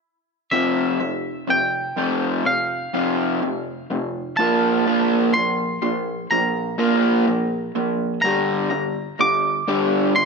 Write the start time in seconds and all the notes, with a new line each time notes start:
0.51 F2 C3 F3 E5
1.01 F2 C3
1.48 F2 C3 G5
1.97 F2 C3 F3
2.45 F2 C3 F5
2.94 F2 C3 F3
3.42 F2 C3
3.90 F2 C3
4.37 A#2 F3 A#3 A5
4.87 A#2 F3 A#3
5.34 A#2 F3 C6
5.82 A#2 F3
6.31 A#2 F3 A#5
6.78 A#2 F3 A#3
7.27 A#2 F3
7.76 A#2 F3
8.22 G2 D3 G3 A#5
8.71 G2 D3
9.20 G2 D3 D6
9.68 G2 D3 G3
10.16 G2 D3 C6